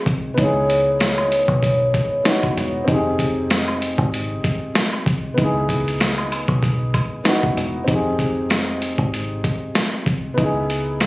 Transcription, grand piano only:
0.00 0.32 C4 medium
0.00 0.34 D#4 medium
0.00 0.37 G#4 medium
0.00 0.35 G5 medium
0.34 2.20 B3 medium
0.34 2.21 D#4 medium
0.41 2.23 E4 medium
0.41 2.25 G#4 medium
2.24 2.87 B3 medium
2.24 2.86 D#4 medium
2.24 2.89 E4 medium
2.29 2.89 F#4 medium
2.84 5.32 C4 medium
2.84 5.34 D#4 medium
2.91 5.35 G4 medium
2.91 5.37 G#4 medium
5.34 7.20 B3 medium
5.34 7.21 D#4 medium
5.41 7.23 E4 medium
5.41 7.25 G#4 medium
7.24 7.87 B3 medium
7.24 7.86 D#4 medium
7.24 7.89 E4 medium
7.29 7.89 F#4 medium
7.84 10.32 C4 medium
7.84 10.34 D#4 medium
7.91 10.35 G4 medium
7.91 10.37 G#4 medium
10.34 11.06 B3 medium
10.34 11.06 D#4 medium
10.41 11.06 E4 medium
10.41 11.06 G#4 medium

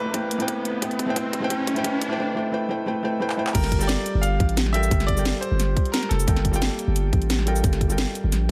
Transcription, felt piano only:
0.00 0.13 A3 medium
0.00 0.41 C4 medium
0.00 0.14 E4 medium
0.00 0.14 B4 medium
0.00 0.15 C5 medium
0.00 0.15 G5 loud
0.13 0.36 A3 medium
0.13 0.37 E4 medium
0.13 0.38 B4 medium
0.13 0.38 C5 medium
0.13 0.38 G5 medium
0.38 0.80 A3 medium
0.38 0.81 C4 medium
0.38 0.80 E4 medium
0.38 0.81 B4 medium
0.42 0.82 G5 loud
0.81 1.05 A3 medium
0.81 1.06 E4 medium
0.81 1.06 B4 medium
0.81 1.06 C5 medium
0.81 1.06 G5 medium
1.06 1.14 A3 loud
1.06 1.14 E4 medium
1.06 1.15 B4 medium
1.06 1.15 C5 medium
1.10 1.16 G5 loud
1.15 1.39 A3 medium
1.15 1.40 E4 medium
1.15 1.40 B4 medium
1.15 1.40 C5 medium
1.15 1.41 G5 medium
1.40 1.48 A3 loud
1.40 1.49 E4 medium
1.40 1.49 B4 medium
1.40 1.50 C5 medium
1.44 1.50 G5 loud
1.50 1.73 A3 medium
1.50 1.74 E4 medium
1.50 1.74 B4 medium
1.50 1.75 C5 medium
1.50 1.75 G5 medium
1.74 1.82 A3 loud
1.74 1.83 E4 medium
1.74 1.83 B4 medium
1.74 1.84 C5 medium
1.78 1.84 G5 loud
1.84 2.07 A3 medium
1.84 2.08 E4 medium
1.84 2.08 B4 medium
1.84 2.09 C5 medium
1.84 2.09 G5 loud
2.08 2.16 A3 loud
2.08 2.17 E4 loud
2.08 2.17 B4 medium
2.08 2.18 C5 medium
2.13 2.18 G5 loud
2.18 2.33 A3 medium
2.18 2.34 E4 medium
2.18 2.34 B4 medium
2.18 2.35 C5 medium
2.18 2.35 G5 medium
2.35 2.50 A3 medium
2.35 2.51 E4 medium
2.35 2.51 B4 medium
2.35 2.52 C5 medium
2.35 2.52 G5 medium
2.52 2.67 A3 medium
2.52 2.68 E4 medium
2.52 2.68 B4 medium
2.52 2.69 C5 medium
2.52 2.69 G5 medium
2.69 2.85 A3 medium
2.69 2.85 E4 medium
2.69 2.86 B4 medium
2.69 2.86 C5 medium
2.69 2.86 G5 medium
2.86 3.01 A3 medium
2.86 3.02 E4 medium
2.86 3.02 B4 medium
2.86 3.03 C5 medium
2.86 3.03 G5 medium
3.03 3.18 A3 medium
3.03 3.19 E4 medium
3.03 3.20 B4 medium
3.03 3.20 C5 medium
3.03 3.20 G5 loud
3.20 3.35 A3 medium
3.20 3.36 E4 medium
3.20 3.36 B4 medium
3.20 3.37 C5 medium
3.20 3.37 G5 loud
3.37 3.53 A3 medium
3.37 3.53 E4 medium
3.37 3.54 B4 medium
3.37 3.54 C5 medium
3.37 3.54 G5 medium
3.54 3.77 G3 medium
3.54 3.78 F4 medium
3.54 3.79 A4 medium
3.54 3.79 A#4 medium
3.54 3.79 G5 medium
3.79 4.71 G3 loud
3.79 4.72 F4 medium
3.79 4.72 A4 medium
3.79 4.73 A#4 medium
3.83 4.73 G5 loud
4.73 4.89 G3 medium
4.73 4.89 F4 medium
4.73 4.89 A4 medium
4.73 4.90 A#4 medium
4.73 4.90 G5 loud
4.90 5.13 G3 medium
4.90 5.14 F4 medium
4.90 5.15 A4 medium
4.90 5.15 A#4 medium
4.90 5.16 G5 medium
5.15 6.25 G3 medium
5.15 6.25 F4 medium
5.15 6.26 A4 medium
5.15 6.26 A#4 medium
5.19 6.27 G5 loud
6.27 6.50 G3 medium
6.27 6.51 F4 medium
6.27 6.51 A4 medium
6.27 6.52 A#4 medium
6.27 6.52 G5 medium
6.52 7.44 G3 loud
6.52 7.46 A#3 medium
6.52 7.45 F4 medium
6.52 7.45 A4 medium
6.56 7.46 G5 loud
7.46 7.62 G3 medium
7.46 7.62 F4 medium
7.46 7.62 A4 medium
7.46 7.62 A#4 medium
7.46 7.63 G5 loud
7.63 7.86 G3 medium
7.63 7.87 F4 medium
7.63 7.88 A4 medium
7.63 7.88 A#4 medium
7.63 7.88 G5 medium
7.88 8.51 G3 medium
7.88 8.51 F4 medium
7.88 8.51 A4 medium
7.88 8.51 A#4 medium
7.92 8.51 G5 medium

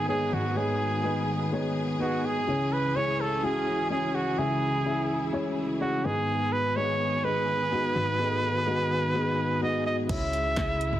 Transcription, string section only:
0.00 2.43 D#3 medium
0.00 2.43 B3 medium
0.00 6.00 G#4 medium
2.47 6.01 E3 medium
2.47 4.36 C#4 medium
4.37 6.03 E4 medium
6.05 10.06 D#3 medium
6.05 10.06 B3 medium
6.05 10.06 G#4 medium
10.09 11.00 C#3 medium
10.09 11.00 G#3 medium
10.09 11.00 E4 medium

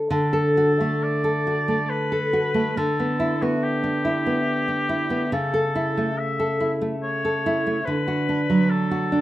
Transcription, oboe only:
0.11 1.05 A4 loud
1.03 1.91 D5 loud
1.90 2.79 B4 loud
2.77 3.43 A4 medium
3.42 3.65 F#4 medium
3.63 5.33 G4 loud
5.33 6.20 A4 medium
6.18 6.76 E5 medium
7.03 7.87 C#5 loud
7.86 8.71 B4 loud
8.69 9.21 A4 loud

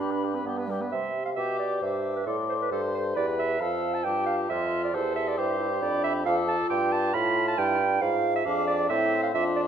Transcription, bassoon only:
0.00 0.40 G2 medium
0.45 0.86 G2 soft
0.92 1.34 C3 soft
1.37 1.81 B2 soft
1.81 2.26 G2 soft
2.26 2.71 A2 soft
2.71 3.15 G2 soft
3.16 3.60 E2 soft
3.60 4.06 F2 soft
4.04 4.49 G2 soft
4.49 4.93 F2 soft
4.94 5.39 E2 soft
5.37 5.81 G2 medium
5.81 6.25 F2 medium
6.26 6.58 F2 medium
6.70 7.13 G2 medium
7.14 7.57 A2 medium
7.58 8.01 G2 medium
8.02 8.45 G#2 medium
8.45 8.89 F2 medium
8.90 9.31 A2 medium
9.34 9.68 F2 medium

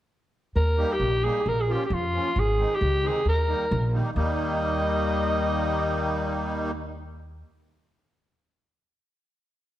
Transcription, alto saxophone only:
0.56 0.94 A#4 medium
0.93 1.26 G4 medium
1.24 1.50 G#4 medium
1.49 1.62 A#4 loud
1.61 1.74 G#4 medium
1.72 1.85 G4 medium
1.85 1.95 G4 medium
1.94 2.41 F4 medium
2.40 2.77 G#4 medium
2.75 3.09 G4 medium
3.07 3.27 G#4 medium
3.29 3.90 A#4 medium
4.17 6.72 D#5 medium

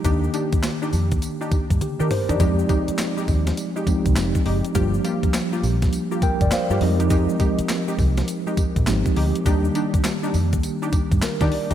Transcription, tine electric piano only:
0.04 2.36 D#3 medium
0.04 2.36 A#3 medium
0.04 2.37 D4 medium
0.04 1.79 G4 medium
1.82 1.99 G4 medium
2.01 2.11 A#4 medium
2.11 2.29 C5 medium
2.30 2.58 D5 medium
2.40 3.84 F3 medium
2.40 3.84 G#3 medium
2.40 3.85 C4 medium
2.40 3.85 D#4 medium
2.40 3.85 G4 medium
3.87 4.74 F3 medium
3.87 4.76 G#3 medium
3.87 4.76 C4 medium
3.87 4.76 D#4 medium
3.87 4.76 G4 medium
4.75 6.77 F3 medium
4.75 6.77 G3 medium
4.75 6.78 A#3 medium
4.75 6.78 D4 medium
4.75 6.78 G4 medium
6.23 6.40 A#4 medium
6.23 6.50 G5 medium
6.42 6.52 D5 medium
6.52 6.70 C5 medium
6.52 6.80 F5 medium
6.71 6.99 A#4 medium
6.81 8.83 F3 medium
6.81 6.90 G3 medium
6.81 8.83 C4 medium
6.81 8.84 D#4 medium
6.81 8.84 G4 medium
6.81 7.09 D#5 medium
6.88 8.86 G#3 medium
8.88 9.46 F3 medium
8.88 9.46 G#3 medium
8.88 9.46 C4 medium
8.88 9.47 D#4 medium
8.88 9.47 G4 medium
9.46 11.74 D#3 medium
9.46 11.74 G3 medium
9.46 11.74 A#3 medium
9.46 11.74 D4 medium
9.46 11.74 G4 medium
11.23 11.40 A#4 medium
11.42 11.69 D5 medium
11.71 11.74 D#5 medium

